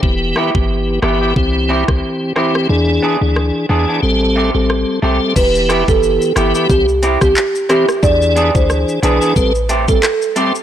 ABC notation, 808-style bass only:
X:1
M:4/4
L:1/16
Q:"Swing 16ths" 1/4=90
K:Em
V:1 name="808-style bass" clef=bass
E,,,2 z G,,,3 G,,,2 C,,3 C,, z4 | E,,2 z D,,2 z E,, z A,,,3 A,,,2 z B,,, z | E,,,3 F,,,2 z G,,, z C,,3 C,, z4 | E,,3 D,,2 z B,,, z A,,,4 z4 |]